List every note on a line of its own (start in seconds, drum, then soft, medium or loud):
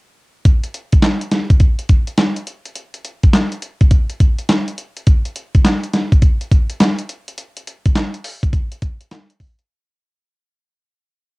0.45 kick loud
0.45 closed hi-hat medium
0.64 closed hi-hat medium
0.74 closed hi-hat medium
0.92 kick medium
0.92 closed hi-hat medium
1.02 snare loud
1.02 clap medium
1.02 closed hi-hat medium
1.21 closed hi-hat soft
1.31 snare medium
1.31 closed hi-hat medium
1.50 kick loud
1.50 closed hi-hat medium
1.60 kick medium
1.60 closed hi-hat medium
1.79 closed hi-hat soft
1.89 kick medium
1.89 closed hi-hat medium
2.07 closed hi-hat medium
2.18 snare loud
2.18 clap medium
2.18 closed hi-hat medium
2.36 closed hi-hat medium
2.47 closed hi-hat medium
2.65 closed hi-hat soft
2.76 closed hi-hat medium
2.94 closed hi-hat soft
3.05 closed hi-hat medium
3.23 kick medium
3.23 closed hi-hat soft
3.33 snare loud
3.33 clap medium
3.33 closed hi-hat medium
3.52 closed hi-hat soft
3.62 closed hi-hat medium
3.81 kick loud
3.81 closed hi-hat soft
3.91 kick medium
3.91 closed hi-hat medium
4.10 closed hi-hat soft
4.20 kick medium
4.20 closed hi-hat medium
4.39 closed hi-hat medium
4.49 snare loud
4.49 clap medium
4.49 closed hi-hat medium
4.68 closed hi-hat medium
4.78 closed hi-hat medium
4.97 closed hi-hat soft
5.07 kick loud
5.07 closed hi-hat medium
5.25 closed hi-hat medium
5.36 closed hi-hat medium
5.55 kick medium
5.55 closed hi-hat medium
5.65 snare loud
5.65 clap medium
5.65 closed hi-hat medium
5.83 closed hi-hat soft
5.93 snare medium
5.93 closed hi-hat medium
6.12 kick loud
6.12 closed hi-hat soft
6.22 kick medium
6.22 closed hi-hat medium
6.41 closed hi-hat soft
6.52 kick medium
6.52 closed hi-hat medium
6.70 closed hi-hat medium
6.80 snare loud
6.80 clap medium
6.80 closed hi-hat medium
6.99 closed hi-hat medium
7.09 closed hi-hat medium
7.28 closed hi-hat soft
7.38 closed hi-hat medium
7.57 closed hi-hat medium
7.67 closed hi-hat medium
7.86 kick medium
7.86 closed hi-hat medium
7.96 snare loud
7.96 clap medium
7.96 closed hi-hat medium
8.14 closed hi-hat soft
8.24 open hi-hat medium
8.43 kick loud
8.43 closed hi-hat medium
8.53 kick medium
8.53 closed hi-hat medium
8.72 closed hi-hat soft
8.82 kick medium
8.82 closed hi-hat medium
9.01 closed hi-hat medium
9.11 snare loud
9.11 clap medium
9.11 closed hi-hat medium
9.30 closed hi-hat medium
9.40 kick medium
9.40 open hi-hat medium
9.59 closed hi-hat soft